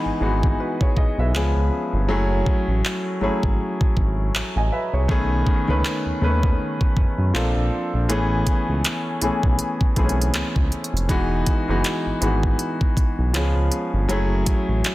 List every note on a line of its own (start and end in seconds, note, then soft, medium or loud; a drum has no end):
0.00 0.21 E3 loud
0.00 0.21 G#3 medium
0.00 0.22 B3 medium
0.00 0.22 D#4 medium
0.00 0.23 F#4 loud
0.00 0.82 G#4 medium
0.00 0.60 B4 medium
0.00 1.19 E5 medium
0.06 0.12 G#1 soft
0.21 0.55 G#1 medium
0.21 1.16 E3 medium
0.21 1.16 G#3 medium
0.21 1.16 B3 medium
0.21 1.17 D#4 medium
0.21 0.59 F#4 medium
0.43 kick medium
0.60 0.81 F#4 medium
0.60 0.80 B4 medium
0.81 0.97 G#4 medium
0.81 0.96 C#5 medium
0.81 kick loud
0.97 1.05 B1 soft
0.97 1.18 G#4 medium
0.97 1.18 D#5 medium
0.97 kick medium
1.18 1.32 B1 loud
1.18 1.55 B4 medium
1.18 1.55 E5 medium
1.34 1.54 C#2 loud
1.34 1.96 F3 medium
1.34 1.97 G#3 medium
1.34 1.97 B3 medium
1.34 1.97 C#4 medium
1.34 1.98 G#4 medium
1.34 clap loud
1.56 1.70 C#2 medium
1.93 2.07 G1 medium
2.08 2.43 F#1 loud
2.08 2.79 F#3 loud
2.08 2.79 A3 medium
2.08 2.79 C#4 medium
2.08 2.80 E4 medium
2.08 2.80 G#4 loud
2.46 2.55 A1 soft
2.46 kick medium
2.68 2.82 A1 medium
2.85 clap loud
3.21 3.30 G#1 soft
3.21 3.69 F#3 medium
3.21 3.69 A3 medium
3.21 3.69 C#4 medium
3.21 3.70 E4 medium
3.21 3.70 G#4 medium
3.43 3.58 G#1 medium
3.43 kick medium
3.81 kick loud
3.97 4.31 G#1 medium
3.97 kick medium
4.33 4.42 A1 soft
4.33 clap loud
4.56 4.70 A1 medium
4.56 4.72 D#5 medium
4.56 4.71 G#5 medium
4.72 4.93 B4 medium
4.72 4.93 E5 medium
4.93 5.08 C2 medium
4.93 5.10 G#4 medium
4.93 5.29 C#5 medium
5.08 5.43 B1 loud
5.08 5.44 D#3 loud
5.08 5.44 A3 loud
5.08 5.44 B3 loud
5.08 5.45 C#4 medium
5.08 5.45 G#4 loud
5.08 kick loud
5.47 kick medium
5.68 5.83 C#2 medium
5.68 6.02 D#3 medium
5.68 6.02 A3 medium
5.68 6.03 B3 medium
5.68 6.03 C#4 medium
5.68 6.03 B4 medium
5.85 clap loud
6.06 6.12 D#2 soft
6.21 6.55 D#2 medium
6.21 7.16 D#3 medium
6.21 7.16 A3 medium
6.21 7.17 B3 medium
6.21 7.17 C#4 medium
6.21 7.17 B4 medium
6.43 kick medium
6.81 kick loud
6.97 7.05 F#2 soft
6.97 kick medium
7.18 7.32 F#2 medium
7.34 7.54 A#1 loud
7.34 7.96 F3 medium
7.34 7.97 A#3 medium
7.34 7.97 C4 medium
7.34 7.97 D4 medium
7.34 7.97 A4 medium
7.34 clap loud
7.56 7.70 A#1 medium
7.93 8.08 A#1 medium
8.09 8.43 A1 loud
8.09 8.79 E3 loud
8.09 8.79 A3 medium
8.09 8.79 B3 medium
8.09 8.80 C#4 medium
8.09 8.80 G#4 loud
8.09 closed hi-hat medium
8.47 8.55 C#2 soft
8.47 kick medium
8.47 closed hi-hat medium
8.68 8.83 C#2 medium
8.84 clap loud
8.84 closed hi-hat medium
9.21 9.30 B1 soft
9.21 9.69 E3 medium
9.21 9.69 A3 medium
9.21 9.69 B3 medium
9.21 9.70 C#4 medium
9.21 9.70 G#4 medium
9.21 closed hi-hat medium
9.43 9.58 B1 medium
9.43 kick medium
9.59 closed hi-hat medium
9.81 kick loud
9.96 10.30 B1 medium
9.96 10.66 E3 medium
9.96 10.67 A3 medium
9.96 10.67 B3 medium
9.96 10.05 C4 medium
9.96 10.68 G#4 medium
9.96 kick medium
9.96 closed hi-hat medium
10.04 10.70 C#4 medium
10.09 closed hi-hat medium
10.22 closed hi-hat soft
10.34 10.43 C#2 soft
10.34 clap loud
10.34 closed hi-hat medium
10.56 10.70 C#2 medium
10.56 kick medium
10.72 closed hi-hat soft
10.84 closed hi-hat soft
10.93 11.07 F1 medium
10.93 closed hi-hat medium
11.09 11.43 E1 loud
11.09 11.44 E3 loud
11.09 11.44 G#3 medium
11.09 11.44 B3 medium
11.09 11.45 D#4 medium
11.09 11.45 F#4 loud
11.09 kick loud
11.09 closed hi-hat medium
11.46 kick medium
11.46 closed hi-hat medium
11.68 11.83 F#1 medium
11.68 12.02 E3 medium
11.68 12.03 G#3 medium
11.68 12.03 B3 medium
11.68 12.03 D#4 medium
11.68 12.03 F#4 medium
11.84 clap loud
11.84 closed hi-hat medium
12.06 12.12 G#1 medium
12.21 12.55 G#1 medium
12.21 13.16 E3 medium
12.21 13.16 G#3 medium
12.21 13.16 B3 medium
12.21 13.17 D#4 medium
12.21 13.17 F#4 medium
12.21 closed hi-hat medium
12.43 kick medium
12.59 closed hi-hat medium
12.81 kick loud
12.97 13.05 B1 soft
12.97 kick medium
12.97 closed hi-hat medium
13.19 13.33 B1 medium
13.33 13.54 C#2 loud
13.33 13.96 F3 medium
13.33 13.97 G#3 medium
13.33 13.97 B3 medium
13.33 13.97 C#4 medium
13.33 13.97 G#4 medium
13.33 clap loud
13.33 closed hi-hat medium
13.56 13.70 C#2 medium
13.72 closed hi-hat medium
13.94 14.08 G1 medium
14.09 14.43 F#1 loud
14.09 14.79 F#3 loud
14.09 14.79 A3 medium
14.09 14.79 C#4 medium
14.09 14.80 E4 loud
14.09 14.80 G#4 loud
14.09 closed hi-hat medium
14.46 14.55 A1 medium
14.46 kick medium
14.46 closed hi-hat medium
14.68 14.83 A1 medium
14.84 clap loud
14.84 closed hi-hat medium